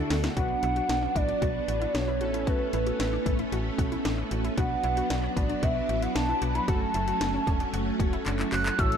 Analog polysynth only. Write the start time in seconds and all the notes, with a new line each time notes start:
Already playing: A3 D4 F#4 A4
0.37 B3 D4 F#4 B4
2.21 A3 C#4 E4 A4
4.58 B3 D4 F#4 B4
6.68 A3 C#4 F#4 A4
8.79 A3 C#4 E4 A4